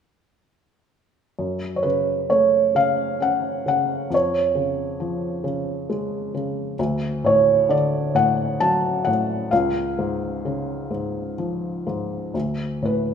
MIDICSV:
0, 0, Header, 1, 2, 480
1, 0, Start_track
1, 0, Key_signature, 3, "minor"
1, 0, Tempo, 923077
1, 718, Time_signature, 6, 3, 24, 8
1, 1672, Tempo, 891530
1, 3592, Tempo, 910470
1, 5032, Tempo, 947867
1, 6869, End_track
2, 0, Start_track
2, 0, Title_t, "Felt piano"
2, 0, Program_c, 0, 0
2, 721, Note_on_c, 0, 42, 37
2, 817, Control_c, 0, 64, 127
2, 917, Note_on_c, 0, 73, 38
2, 950, Note_on_c, 0, 71, 52
2, 956, Note_off_c, 0, 73, 0
2, 958, Note_on_c, 0, 49, 32
2, 1177, Note_off_c, 0, 71, 0
2, 1195, Note_on_c, 0, 73, 55
2, 1197, Note_on_c, 0, 57, 36
2, 1422, Note_off_c, 0, 49, 0
2, 1430, Note_on_c, 0, 49, 39
2, 1435, Note_on_c, 0, 77, 74
2, 1441, Note_off_c, 0, 73, 0
2, 1655, Note_off_c, 0, 77, 0
2, 1665, Note_on_c, 0, 61, 41
2, 1676, Note_on_c, 0, 78, 69
2, 1900, Note_off_c, 0, 78, 0
2, 1903, Note_off_c, 0, 49, 0
2, 1911, Note_on_c, 0, 49, 36
2, 1923, Note_on_c, 0, 78, 68
2, 2135, Note_off_c, 0, 57, 0
2, 2137, Note_off_c, 0, 42, 0
2, 2139, Note_off_c, 0, 61, 0
2, 2148, Note_off_c, 0, 49, 0
2, 2148, Note_on_c, 0, 41, 43
2, 2164, Control_c, 0, 64, 0
2, 2169, Note_off_c, 0, 78, 0
2, 2171, Note_on_c, 0, 73, 58
2, 2269, Control_c, 0, 64, 127
2, 2392, Note_on_c, 0, 49, 41
2, 2633, Note_on_c, 0, 53, 41
2, 2861, Note_off_c, 0, 49, 0
2, 2869, Note_on_c, 0, 49, 42
2, 3097, Note_off_c, 0, 73, 0
2, 3115, Note_on_c, 0, 56, 45
2, 3349, Note_off_c, 0, 49, 0
2, 3357, Note_on_c, 0, 49, 43
2, 3566, Note_off_c, 0, 41, 0
2, 3569, Note_off_c, 0, 53, 0
2, 3579, Note_off_c, 0, 56, 0
2, 3588, Note_off_c, 0, 49, 0
2, 3598, Note_on_c, 0, 38, 53
2, 3599, Control_c, 0, 64, 0
2, 3686, Control_c, 0, 64, 127
2, 3835, Note_on_c, 0, 45, 47
2, 3846, Note_on_c, 0, 73, 63
2, 4071, Note_on_c, 0, 50, 46
2, 4078, Note_on_c, 0, 74, 74
2, 4084, Note_off_c, 0, 73, 0
2, 4304, Note_off_c, 0, 45, 0
2, 4312, Note_on_c, 0, 45, 46
2, 4317, Note_on_c, 0, 78, 82
2, 4321, Note_off_c, 0, 74, 0
2, 4538, Note_off_c, 0, 78, 0
2, 4553, Note_on_c, 0, 81, 83
2, 4557, Note_on_c, 0, 54, 49
2, 4786, Note_on_c, 0, 78, 71
2, 4790, Note_off_c, 0, 45, 0
2, 4797, Note_on_c, 0, 45, 46
2, 4800, Note_off_c, 0, 81, 0
2, 5013, Note_off_c, 0, 50, 0
2, 5014, Note_off_c, 0, 38, 0
2, 5021, Note_off_c, 0, 54, 0
2, 5028, Note_off_c, 0, 45, 0
2, 5031, Note_on_c, 0, 77, 63
2, 5037, Note_off_c, 0, 78, 0
2, 5038, Control_c, 0, 64, 0
2, 5038, Note_on_c, 0, 37, 51
2, 5116, Control_c, 0, 64, 127
2, 5272, Note_on_c, 0, 44, 40
2, 5508, Note_on_c, 0, 49, 41
2, 5730, Note_off_c, 0, 44, 0
2, 5738, Note_on_c, 0, 44, 37
2, 5960, Note_off_c, 0, 77, 0
2, 5979, Note_on_c, 0, 53, 37
2, 6217, Note_off_c, 0, 44, 0
2, 6224, Note_on_c, 0, 44, 37
2, 6450, Note_off_c, 0, 37, 0
2, 6451, Note_off_c, 0, 49, 0
2, 6452, Note_off_c, 0, 53, 0
2, 6461, Note_off_c, 0, 44, 0
2, 6465, Note_on_c, 0, 38, 42
2, 6473, Control_c, 0, 64, 0
2, 6557, Control_c, 0, 64, 127
2, 6709, Note_on_c, 0, 45, 37
2, 6724, Note_on_c, 0, 71, 55
2, 6869, Note_off_c, 0, 38, 0
2, 6869, Note_off_c, 0, 45, 0
2, 6869, Note_off_c, 0, 71, 0
2, 6869, End_track
0, 0, End_of_file